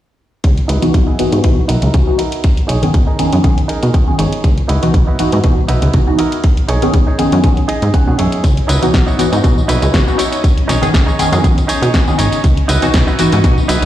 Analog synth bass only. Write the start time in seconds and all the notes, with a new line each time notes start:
0.44 C#2
0.69 C#2
0.83 B1
0.94 B1
1.19 G#2
1.32 G#2
1.44 B2
1.69 B1
1.83 C#2
1.94 C#2
2.69 B1
2.83 G#1
2.94 G#1
3.19 F#2
3.33 F#2
3.44 B1
3.83 B2
4.19 G#1
4.44 C#2
4.69 C#2
4.83 B1
4.94 B1
5.19 G#2
5.33 G#2
5.44 B2
5.69 B1
5.82 C#2
5.94 C#2
6.69 B1
6.94 G#1
7.19 F#2
7.32 F#2
7.44 B1
7.82 G#2
8.07 B2
8.19 F#2
8.44 C#2
8.69 C#2
8.94 B1
9.19 G#2
9.33 G#2
9.44 B2
9.69 B1
9.83 C#2
9.94 C#2
10.69 B1
10.82 G#1
10.94 G#1
11.19 F#2
11.32 F#2
11.44 B1
11.82 B2
12.19 G#1
12.44 C#2
12.69 C#2
12.83 B1
12.94 B1
13.19 G#2
13.33 G#2
13.44 B2
13.69 B1